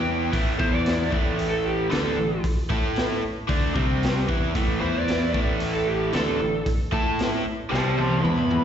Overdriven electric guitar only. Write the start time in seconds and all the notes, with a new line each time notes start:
Already playing: E3 B3 E4
0.32 A2 E3 A3
0.58 E3 B3 E4
1.11 A2 E3 A3
1.90 D3 A3 D4
2.17 A2 E3
2.70 A3 E4 A4
3.22 muted overdriven electric guitar stroke
3.48 D3 A3 D4
3.74 C3 G3 C4
4.28 E3 B3 E4
4.55 A2 E3 A3
4.81 E3 B3 E4
5.34 A2 E3 A3
6.13 D3 A3 D4
6.40 A2 E3
6.92 A3 E4 A4
7.44 muted overdriven electric guitar stroke
7.70 C3 G3 C4
8.23 E3 B3 E4